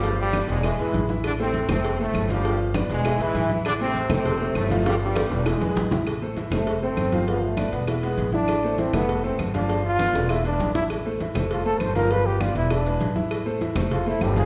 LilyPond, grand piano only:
\new Staff \with { instrumentName = "Grand piano" } { \time 4/4 \key a \minor \tempo 4 = 199 <f f' f''>4 <b b' d''>4 <e e' e''>8 <gis gis' b'>4 <e e' e''>8~ | <e e' e''>8 <a a' c''>4 <a a' c''>4 <a a' c''>4 <f f' f''>8 | <f f' f''>4 <b b' d''>4 <e e' e''>8 <gis gis' b'>4 <e e' e''>8~ | <e e' e''>8 <a a' c''>4 <a a' c''>4 <a a' c''>4 <f f' f''>8 |
<f f' f''>4 <b b' d''>4 <e e' e''>8 <gis gis' b'>4 <e e' e''>8 | r8 <a a' c''>8 <e e' e''>8 <a a' c''>4 <a a' c''>4 <f f' f''>8 | <f f' f''>4 <b b' d''>4 <e e' e''>8 <gis gis' b'>4 <e e' e''>8~ | <e e' e''>8 <a a' c''>8 <e e' e''>8 <a a' e''>4 <a a' c''>4 <f f' f''>8 |
<f f' f''>4 <b b' d''>4 <e e' e''>8 <gis gis' b'>4 <e e' e''>8~ | <e e' e''>8 <a a' c''>8 <e e' e''>8 <a a' c''>4 <a a' c''>4 <f f' f''>8 | <f f' f''>4 <b b' d''>4 <e e' e''>8 <gis gis' b'>4 <e e' e''>8~ | <e e' e''>8 <a a' c''>8 <e e' e''>8 <a a' c''>4 <a a' c''>4 <f f' f''>8 | }